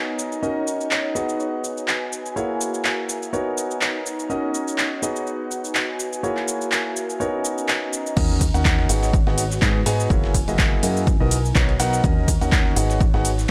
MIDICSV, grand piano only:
0, 0, Header, 1, 2, 480
1, 0, Start_track
1, 0, Key_signature, 5, "minor"
1, 0, Tempo, 483871
1, 422, Time_signature, 4, 2, 24, 8
1, 13399, End_track
2, 0, Start_track
2, 0, Title_t, "Grand piano"
2, 0, Program_c, 0, 0
2, 0, Note_on_c, 0, 59, 71
2, 0, Note_on_c, 0, 63, 66
2, 0, Note_on_c, 0, 66, 66
2, 0, Note_on_c, 0, 70, 65
2, 0, Note_on_c, 0, 73, 80
2, 396, Note_off_c, 0, 59, 0
2, 396, Note_off_c, 0, 63, 0
2, 396, Note_off_c, 0, 66, 0
2, 396, Note_off_c, 0, 70, 0
2, 396, Note_off_c, 0, 73, 0
2, 422, Note_on_c, 0, 61, 65
2, 422, Note_on_c, 0, 63, 65
2, 422, Note_on_c, 0, 66, 63
2, 422, Note_on_c, 0, 70, 61
2, 422, Note_on_c, 0, 75, 77
2, 1116, Note_off_c, 0, 61, 0
2, 1116, Note_off_c, 0, 63, 0
2, 1116, Note_off_c, 0, 66, 0
2, 1116, Note_off_c, 0, 70, 0
2, 1116, Note_off_c, 0, 75, 0
2, 1142, Note_on_c, 0, 59, 70
2, 1142, Note_on_c, 0, 63, 59
2, 1142, Note_on_c, 0, 66, 60
2, 1142, Note_on_c, 0, 68, 60
2, 1142, Note_on_c, 0, 75, 74
2, 2316, Note_off_c, 0, 59, 0
2, 2316, Note_off_c, 0, 63, 0
2, 2316, Note_off_c, 0, 66, 0
2, 2316, Note_off_c, 0, 68, 0
2, 2316, Note_off_c, 0, 75, 0
2, 2342, Note_on_c, 0, 64, 62
2, 2342, Note_on_c, 0, 66, 63
2, 2342, Note_on_c, 0, 68, 64
2, 2342, Note_on_c, 0, 73, 77
2, 2343, Note_on_c, 0, 58, 69
2, 3276, Note_off_c, 0, 58, 0
2, 3276, Note_off_c, 0, 64, 0
2, 3276, Note_off_c, 0, 66, 0
2, 3276, Note_off_c, 0, 68, 0
2, 3276, Note_off_c, 0, 73, 0
2, 3302, Note_on_c, 0, 59, 75
2, 3302, Note_on_c, 0, 63, 69
2, 3302, Note_on_c, 0, 66, 65
2, 3302, Note_on_c, 0, 70, 66
2, 3302, Note_on_c, 0, 73, 75
2, 4236, Note_off_c, 0, 59, 0
2, 4236, Note_off_c, 0, 63, 0
2, 4236, Note_off_c, 0, 66, 0
2, 4236, Note_off_c, 0, 70, 0
2, 4236, Note_off_c, 0, 73, 0
2, 4262, Note_on_c, 0, 66, 62
2, 4262, Note_on_c, 0, 70, 61
2, 4263, Note_on_c, 0, 61, 72
2, 4263, Note_on_c, 0, 63, 65
2, 4263, Note_on_c, 0, 75, 80
2, 4956, Note_off_c, 0, 63, 0
2, 4956, Note_off_c, 0, 66, 0
2, 4956, Note_off_c, 0, 70, 0
2, 4957, Note_off_c, 0, 61, 0
2, 4957, Note_off_c, 0, 75, 0
2, 4983, Note_on_c, 0, 59, 72
2, 4983, Note_on_c, 0, 63, 62
2, 4983, Note_on_c, 0, 66, 61
2, 4983, Note_on_c, 0, 68, 61
2, 4983, Note_on_c, 0, 75, 76
2, 6156, Note_off_c, 0, 63, 0
2, 6157, Note_off_c, 0, 59, 0
2, 6157, Note_off_c, 0, 66, 0
2, 6157, Note_off_c, 0, 68, 0
2, 6157, Note_off_c, 0, 75, 0
2, 6183, Note_on_c, 0, 58, 73
2, 6183, Note_on_c, 0, 64, 63
2, 6183, Note_on_c, 0, 66, 67
2, 6183, Note_on_c, 0, 68, 65
2, 6183, Note_on_c, 0, 73, 79
2, 7117, Note_off_c, 0, 58, 0
2, 7117, Note_off_c, 0, 64, 0
2, 7117, Note_off_c, 0, 66, 0
2, 7117, Note_off_c, 0, 68, 0
2, 7117, Note_off_c, 0, 73, 0
2, 7143, Note_on_c, 0, 59, 72
2, 7143, Note_on_c, 0, 63, 67
2, 7143, Note_on_c, 0, 66, 67
2, 7143, Note_on_c, 0, 70, 68
2, 7143, Note_on_c, 0, 73, 82
2, 8077, Note_off_c, 0, 59, 0
2, 8077, Note_off_c, 0, 63, 0
2, 8077, Note_off_c, 0, 66, 0
2, 8077, Note_off_c, 0, 70, 0
2, 8077, Note_off_c, 0, 73, 0
2, 8103, Note_on_c, 0, 61, 83
2, 8103, Note_on_c, 0, 63, 72
2, 8103, Note_on_c, 0, 66, 68
2, 8103, Note_on_c, 0, 70, 69
2, 8103, Note_on_c, 0, 75, 87
2, 8354, Note_off_c, 0, 61, 0
2, 8354, Note_off_c, 0, 63, 0
2, 8354, Note_off_c, 0, 66, 0
2, 8354, Note_off_c, 0, 70, 0
2, 8354, Note_off_c, 0, 75, 0
2, 8475, Note_on_c, 0, 61, 80
2, 8475, Note_on_c, 0, 63, 74
2, 8475, Note_on_c, 0, 66, 72
2, 8475, Note_on_c, 0, 70, 72
2, 8475, Note_on_c, 0, 78, 92
2, 8797, Note_off_c, 0, 61, 0
2, 8797, Note_off_c, 0, 63, 0
2, 8797, Note_off_c, 0, 66, 0
2, 8797, Note_off_c, 0, 70, 0
2, 8797, Note_off_c, 0, 78, 0
2, 8822, Note_on_c, 0, 59, 70
2, 8822, Note_on_c, 0, 63, 70
2, 8822, Note_on_c, 0, 66, 71
2, 8822, Note_on_c, 0, 68, 68
2, 8822, Note_on_c, 0, 78, 82
2, 9074, Note_off_c, 0, 59, 0
2, 9074, Note_off_c, 0, 63, 0
2, 9074, Note_off_c, 0, 66, 0
2, 9074, Note_off_c, 0, 68, 0
2, 9074, Note_off_c, 0, 78, 0
2, 9195, Note_on_c, 0, 59, 84
2, 9195, Note_on_c, 0, 63, 74
2, 9195, Note_on_c, 0, 66, 77
2, 9195, Note_on_c, 0, 68, 72
2, 9195, Note_on_c, 0, 78, 88
2, 9343, Note_off_c, 0, 59, 0
2, 9343, Note_off_c, 0, 63, 0
2, 9343, Note_off_c, 0, 66, 0
2, 9343, Note_off_c, 0, 68, 0
2, 9343, Note_off_c, 0, 78, 0
2, 9542, Note_on_c, 0, 59, 101
2, 9542, Note_on_c, 0, 63, 89
2, 9542, Note_on_c, 0, 66, 90
2, 9542, Note_on_c, 0, 68, 87
2, 9542, Note_on_c, 0, 75, 107
2, 9707, Note_off_c, 0, 59, 0
2, 9707, Note_off_c, 0, 63, 0
2, 9707, Note_off_c, 0, 66, 0
2, 9707, Note_off_c, 0, 68, 0
2, 9707, Note_off_c, 0, 75, 0
2, 9783, Note_on_c, 0, 59, 98
2, 9783, Note_on_c, 0, 63, 91
2, 9783, Note_on_c, 0, 66, 86
2, 9783, Note_on_c, 0, 68, 93
2, 9783, Note_on_c, 0, 80, 106
2, 9990, Note_off_c, 0, 59, 0
2, 9990, Note_off_c, 0, 63, 0
2, 9990, Note_off_c, 0, 66, 0
2, 9990, Note_off_c, 0, 68, 0
2, 9990, Note_off_c, 0, 80, 0
2, 10022, Note_on_c, 0, 58, 75
2, 10022, Note_on_c, 0, 64, 76
2, 10022, Note_on_c, 0, 66, 71
2, 10022, Note_on_c, 0, 68, 73
2, 10022, Note_on_c, 0, 73, 89
2, 10274, Note_off_c, 0, 58, 0
2, 10274, Note_off_c, 0, 64, 0
2, 10274, Note_off_c, 0, 66, 0
2, 10274, Note_off_c, 0, 68, 0
2, 10274, Note_off_c, 0, 73, 0
2, 10395, Note_on_c, 0, 58, 84
2, 10395, Note_on_c, 0, 64, 73
2, 10395, Note_on_c, 0, 66, 79
2, 10395, Note_on_c, 0, 68, 72
2, 10395, Note_on_c, 0, 75, 86
2, 10716, Note_off_c, 0, 64, 0
2, 10716, Note_off_c, 0, 68, 0
2, 10716, Note_off_c, 0, 75, 0
2, 10717, Note_off_c, 0, 58, 0
2, 10717, Note_off_c, 0, 66, 0
2, 10742, Note_on_c, 0, 68, 70
2, 10743, Note_on_c, 0, 58, 74
2, 10743, Note_on_c, 0, 64, 68
2, 10743, Note_on_c, 0, 66, 71
2, 10743, Note_on_c, 0, 75, 84
2, 10969, Note_off_c, 0, 58, 0
2, 10969, Note_off_c, 0, 64, 0
2, 10969, Note_off_c, 0, 66, 0
2, 10969, Note_off_c, 0, 68, 0
2, 10970, Note_off_c, 0, 75, 0
2, 11114, Note_on_c, 0, 59, 86
2, 11114, Note_on_c, 0, 63, 72
2, 11114, Note_on_c, 0, 66, 76
2, 11114, Note_on_c, 0, 70, 75
2, 11114, Note_on_c, 0, 75, 93
2, 11262, Note_off_c, 0, 59, 0
2, 11262, Note_off_c, 0, 63, 0
2, 11262, Note_off_c, 0, 66, 0
2, 11262, Note_off_c, 0, 70, 0
2, 11262, Note_off_c, 0, 75, 0
2, 11462, Note_on_c, 0, 59, 92
2, 11462, Note_on_c, 0, 63, 87
2, 11462, Note_on_c, 0, 66, 91
2, 11462, Note_on_c, 0, 70, 91
2, 11462, Note_on_c, 0, 73, 100
2, 11627, Note_off_c, 0, 59, 0
2, 11627, Note_off_c, 0, 63, 0
2, 11627, Note_off_c, 0, 66, 0
2, 11627, Note_off_c, 0, 70, 0
2, 11627, Note_off_c, 0, 73, 0
2, 11702, Note_on_c, 0, 59, 94
2, 11702, Note_on_c, 0, 63, 90
2, 11702, Note_on_c, 0, 78, 115
2, 11703, Note_on_c, 0, 66, 90
2, 11703, Note_on_c, 0, 70, 91
2, 11910, Note_off_c, 0, 59, 0
2, 11910, Note_off_c, 0, 63, 0
2, 11910, Note_off_c, 0, 66, 0
2, 11910, Note_off_c, 0, 70, 0
2, 11910, Note_off_c, 0, 78, 0
2, 11942, Note_on_c, 0, 66, 74
2, 11942, Note_on_c, 0, 70, 76
2, 11942, Note_on_c, 0, 75, 90
2, 11943, Note_on_c, 0, 61, 79
2, 11943, Note_on_c, 0, 63, 74
2, 12194, Note_off_c, 0, 61, 0
2, 12194, Note_off_c, 0, 63, 0
2, 12194, Note_off_c, 0, 66, 0
2, 12194, Note_off_c, 0, 70, 0
2, 12194, Note_off_c, 0, 75, 0
2, 12315, Note_on_c, 0, 61, 78
2, 12315, Note_on_c, 0, 63, 74
2, 12315, Note_on_c, 0, 66, 73
2, 12315, Note_on_c, 0, 70, 80
2, 12315, Note_on_c, 0, 78, 89
2, 12636, Note_off_c, 0, 61, 0
2, 12636, Note_off_c, 0, 63, 0
2, 12636, Note_off_c, 0, 66, 0
2, 12636, Note_off_c, 0, 70, 0
2, 12636, Note_off_c, 0, 78, 0
2, 12662, Note_on_c, 0, 63, 72
2, 12662, Note_on_c, 0, 66, 70
2, 12663, Note_on_c, 0, 59, 76
2, 12663, Note_on_c, 0, 68, 71
2, 12663, Note_on_c, 0, 78, 85
2, 12914, Note_off_c, 0, 59, 0
2, 12914, Note_off_c, 0, 63, 0
2, 12914, Note_off_c, 0, 66, 0
2, 12914, Note_off_c, 0, 68, 0
2, 12914, Note_off_c, 0, 78, 0
2, 13035, Note_on_c, 0, 59, 78
2, 13035, Note_on_c, 0, 63, 75
2, 13035, Note_on_c, 0, 66, 71
2, 13035, Note_on_c, 0, 68, 78
2, 13035, Note_on_c, 0, 78, 93
2, 13183, Note_off_c, 0, 59, 0
2, 13183, Note_off_c, 0, 63, 0
2, 13183, Note_off_c, 0, 66, 0
2, 13183, Note_off_c, 0, 68, 0
2, 13183, Note_off_c, 0, 78, 0
2, 13399, End_track
0, 0, End_of_file